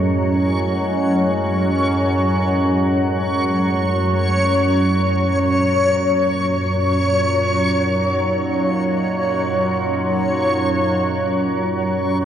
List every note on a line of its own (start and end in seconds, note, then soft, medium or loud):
0.00 12.25 F#2 medium
0.00 5.17 A2 medium
0.00 12.25 F#3 medium
0.00 5.17 G#3 medium
0.00 7.57 C#4 medium
0.00 5.17 F#4 medium
0.00 12.25 C#5 medium
5.16 12.25 A#2 medium
5.67 12.25 F#3 medium
6.99 12.25 F4 medium
7.29 12.25 D#4 medium